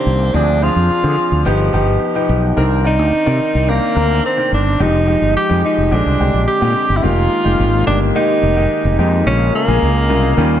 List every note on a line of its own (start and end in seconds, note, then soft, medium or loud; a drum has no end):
0.00 0.36 D#3 medium
0.00 0.36 A#3 medium
0.00 0.36 C4 medium
0.00 0.35 D4 medium
0.00 0.36 G4 medium
0.00 0.36 D5 medium
0.06 0.29 C2 medium
0.34 0.68 D2 loud
0.34 0.59 F3 medium
0.34 0.60 C4 medium
0.34 0.60 D4 medium
0.34 0.64 D4 medium
0.34 0.60 G#4 medium
0.61 1.00 F3 medium
0.61 1.00 C4 medium
0.61 1.00 D4 medium
0.61 1.46 F4 loud
0.61 1.00 G#4 medium
0.76 0.87 F2 medium
0.90 muted fretless electric bass stroke soft
1.03 1.15 D3 loud
1.03 1.42 F3 medium
1.03 1.42 C4 medium
1.03 1.42 D4 medium
1.03 1.42 G#4 medium
1.32 1.43 D2 medium
1.45 1.69 G1 loud
1.45 1.71 F3 medium
1.45 1.71 B3 medium
1.45 1.71 D#4 medium
1.45 1.71 G4 medium
1.73 1.96 G1 medium
1.73 2.11 F3 medium
1.73 2.11 B3 medium
1.73 2.11 D#4 medium
1.73 2.12 G4 medium
2.15 2.53 F3 medium
2.15 2.53 B3 medium
2.15 2.53 D#4 medium
2.15 2.54 G4 medium
2.29 2.52 B1 medium
2.56 2.99 C2 loud
2.56 2.82 D#3 medium
2.56 2.82 C4 medium
2.56 2.82 D4 medium
2.56 2.82 A#4 medium
2.84 3.22 D#3 medium
2.84 3.22 C4 medium
2.84 3.71 D#4 medium
2.84 3.23 A#4 medium
2.84 3.23 D5 medium
2.99 3.10 D2 medium
3.13 muted fretless electric bass stroke soft
3.25 3.38 C3 medium
3.25 3.64 D#3 medium
3.25 3.64 C4 medium
3.25 3.65 A#4 medium
3.25 3.64 D5 medium
3.55 3.78 C2 medium
3.67 3.93 D#3 medium
3.67 4.25 A#3 medium
3.67 3.93 C4 medium
3.67 3.94 D4 medium
3.67 3.94 A#4 medium
3.95 4.19 D2 medium
3.95 4.34 D#3 medium
3.95 4.34 C4 medium
3.95 4.34 D4 medium
3.95 4.34 A#4 medium
4.26 4.51 C4 medium
4.37 4.75 D#3 medium
4.37 4.76 C4 medium
4.37 4.76 D4 medium
4.37 4.76 A#4 medium
4.52 4.75 G1 medium
4.52 4.84 D4 medium
4.79 5.14 F1 loud
4.79 5.05 F3 medium
4.79 5.05 G#3 medium
4.79 5.05 D#4 medium
4.79 5.36 D#4 loud
4.79 5.05 G4 medium
5.06 5.45 F3 medium
5.06 5.45 G#3 medium
5.06 5.46 D#4 medium
5.06 5.46 G4 medium
5.21 5.33 G1 medium
5.36 5.62 G4 loud
5.36 muted fretless electric bass stroke soft
5.49 5.62 F2 medium
5.49 5.87 F3 medium
5.49 5.87 G#3 medium
5.49 5.88 D#4 medium
5.49 5.88 G4 medium
5.65 5.94 D#4 medium
5.78 5.89 F1 medium
5.91 6.03 A#1 medium
5.91 6.17 D3 medium
5.91 6.17 G#3 medium
5.91 6.17 C4 medium
5.91 6.47 D4 medium
5.91 6.17 G4 medium
6.06 6.17 C2 medium
6.19 6.31 C2 medium
6.19 6.57 D3 medium
6.19 6.57 G#3 medium
6.19 6.58 C4 medium
6.19 6.58 G4 medium
6.34 6.45 A#1 medium
6.48 6.98 G4 medium
6.61 6.73 A#2 medium
6.61 6.99 D3 medium
6.61 6.99 G#3 medium
6.61 6.99 C4 medium
6.61 7.00 G4 medium
6.89 7.01 G1 medium
6.97 7.05 E4 medium
7.03 7.26 F1 medium
7.03 7.41 D#3 medium
7.03 7.41 G#3 medium
7.03 7.41 A#3 medium
7.03 7.86 F4 loud
7.03 7.41 G4 medium
7.44 7.57 F1 medium
7.44 7.83 D#3 medium
7.44 7.83 G#3 medium
7.44 7.83 A#3 medium
7.44 7.83 G4 medium
7.59 7.82 G#1 medium
7.86 8.10 G1 medium
7.86 8.12 D#3 medium
7.86 8.12 G#3 medium
7.86 8.12 A#3 medium
7.86 7.99 D4 medium
7.86 8.12 G4 medium
8.15 8.53 D#3 medium
8.15 8.53 G#3 medium
8.15 8.53 A#3 medium
8.15 8.95 D#4 loud
8.15 8.53 G4 medium
8.43 8.66 F1 medium
8.56 8.94 D#3 medium
8.56 8.94 G#3 medium
8.56 8.95 A#3 medium
8.56 8.95 G4 medium
8.85 8.96 F1 medium
8.98 9.21 F2 medium
8.98 9.23 D#3 medium
8.98 9.24 G#3 medium
8.98 9.24 A#3 medium
8.98 9.25 D#4 medium
8.98 9.24 G4 medium
9.26 9.49 A#1 loud
9.26 9.64 C#3 medium
9.26 9.64 G#3 medium
9.26 9.64 A#3 medium
9.26 9.52 C#4 medium
9.26 9.64 F4 medium
9.55 10.60 A#3 medium
9.67 9.79 A#1 medium
9.67 10.05 C#3 medium
9.67 10.06 G#3 medium
9.67 10.06 A#3 medium
9.67 10.06 G#4 medium
9.82 10.10 C#2 medium
10.08 10.32 C2 medium
10.08 10.34 C#3 medium
10.08 10.35 G#3 medium
10.08 10.35 A#3 medium
10.08 10.35 F4 medium
10.37 10.60 D#2 medium
10.37 10.60 D#3 medium
10.37 10.60 G3 medium
10.37 10.60 C#4 medium
10.37 10.60 F4 medium